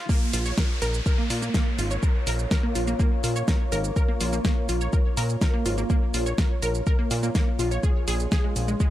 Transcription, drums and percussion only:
0.09 kick, shaker
0.33 open hi-hat, shaker
0.46 shaker
0.58 kick, snare, shaker
0.82 open hi-hat, shaker
0.94 shaker
1.06 kick, shaker
1.30 open hi-hat, shaker
1.42 shaker
1.54 kick, snare, shaker
1.79 open hi-hat, shaker
1.91 shaker
2.03 kick, shaker
2.27 open hi-hat, shaker
2.39 shaker
2.51 kick, snare, shaker
2.75 open hi-hat, shaker
2.88 shaker
3.00 kick, shaker
3.24 open hi-hat, shaker
3.36 shaker
3.48 kick, snare, shaker
3.72 open hi-hat, shaker
3.84 shaker
3.96 kick, shaker
4.21 open hi-hat, shaker
4.33 shaker
4.45 kick, snare, shaker
4.69 open hi-hat, shaker
4.81 shaker
4.93 kick, shaker
5.17 open hi-hat, shaker
5.29 shaker
5.41 kick, snare, shaker
5.66 open hi-hat, shaker
5.78 shaker
5.90 kick, shaker
6.14 open hi-hat, shaker
6.26 shaker
6.38 kick, snare, shaker
6.62 open hi-hat, shaker
6.75 shaker
6.87 kick, shaker
7.11 open hi-hat, shaker
7.23 shaker
7.35 kick, snare, shaker
7.59 open hi-hat, shaker
7.71 shaker
7.83 kick, shaker
8.08 open hi-hat, shaker
8.20 shaker
8.32 kick, snare, shaker
8.56 open hi-hat, shaker
8.68 shaker
8.80 kick, shaker

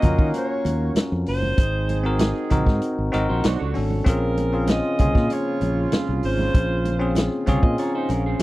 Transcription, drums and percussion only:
0.02 kick, closed hi-hat, low conga
0.19 kick
0.34 closed hi-hat, muted conga
0.65 closed hi-hat, muted conga
0.95 snare, closed hi-hat, high conga
1.26 open hi-hat
1.42 high conga
1.58 kick, closed hi-hat
1.89 closed hi-hat, muted conga
2.19 snare, closed hi-hat, high conga
2.50 kick, closed hi-hat, low conga
2.66 kick, snare
2.82 closed hi-hat
3.13 closed hi-hat, muted conga
3.44 snare, closed hi-hat, high conga
3.75 open hi-hat
3.91 high conga
4.06 kick, closed hi-hat
4.37 closed hi-hat, muted conga
4.67 snare, closed hi-hat, high conga
4.99 kick, closed hi-hat, low conga
5.15 kick, snare
5.30 closed hi-hat, muted conga
5.61 closed hi-hat, muted conga
5.92 snare, closed hi-hat, high conga
6.23 open hi-hat
6.39 high conga
6.55 kick, closed hi-hat
6.85 closed hi-hat, muted conga
7.15 snare, closed hi-hat, high conga
7.47 kick, closed hi-hat, low conga
7.63 kick
7.78 closed hi-hat
8.09 closed hi-hat, muted conga
8.39 closed hi-hat, high conga

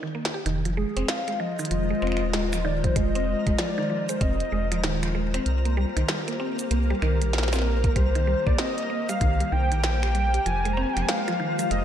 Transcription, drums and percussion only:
0.25 snare
0.46 closed hi-hat
0.65 closed hi-hat
0.97 finger snap, closed hi-hat
1.08 snare, closed hi-hat
1.28 closed hi-hat
1.59 cabasa
1.65 closed hi-hat
1.71 closed hi-hat
2.02 finger snap
2.07 finger snap
2.12 finger snap
2.17 finger snap
2.33 snare, closed hi-hat
2.53 finger snap, cabasa
2.84 kick, closed hi-hat
2.96 kick, closed hi-hat
3.15 closed hi-hat
3.47 finger snap, kick, closed hi-hat
3.59 snare, closed hi-hat
4.09 closed hi-hat, cabasa
4.21 kick, closed hi-hat
4.40 closed hi-hat
4.72 finger snap, closed hi-hat
4.84 snare, closed hi-hat
5.03 finger snap, closed hi-hat
5.34 finger snap, closed hi-hat
5.46 closed hi-hat
5.65 closed hi-hat
5.97 finger snap, closed hi-hat
6.09 snare, closed hi-hat
6.28 closed hi-hat
6.59 closed hi-hat, cabasa
6.71 closed hi-hat
7.02 finger snap
7.22 closed hi-hat
7.33 snare, closed hi-hat
7.38 snare
7.43 snare
7.48 snare
7.53 finger snap, snare, cabasa
7.56 snare
7.59 snare
7.62 snare
7.84 kick, closed hi-hat
7.96 kick, closed hi-hat
8.15 closed hi-hat
8.47 finger snap, kick
8.58 snare, closed hi-hat
8.78 closed hi-hat
9.09 closed hi-hat, cabasa
9.21 kick, closed hi-hat
9.40 closed hi-hat
9.72 finger snap, closed hi-hat
9.84 snare, closed hi-hat
10.03 finger snap
10.15 closed hi-hat
10.34 closed hi-hat
10.46 closed hi-hat
10.65 closed hi-hat
10.97 finger snap, closed hi-hat
11.09 snare, closed hi-hat
11.28 closed hi-hat
11.59 closed hi-hat, cabasa
11.71 closed hi-hat

